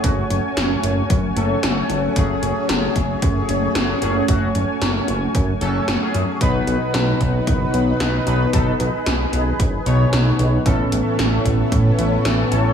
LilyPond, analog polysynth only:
\new Staff \with { instrumentName = "Analog polysynth" } { \time 4/4 \key fis \dorian \tempo 4 = 113 <fis a cis' fis'>8 r2 <fis a cis' a'>8 <fis a cis' a'>4 | <fis a cis' gis'>2. <fis a cis' gis'>8 <fis a cis' gis'>8 | <fis a cis' fis'>8 r2 <fis a cis' a'>8. <fis a cis' gis'>8. | <b, fis b dis' b'>2. <b, fis b dis' b'>8 <b, fis b dis' b'>8 |
<b, fis b dis' a'>8 r2 <b, fis b dis' cis''>8 <b, fis b dis' cis''>4 | <a, e b cis' a'>2. <a, e b cis' a'>8 <a, e b cis' a'>8 | }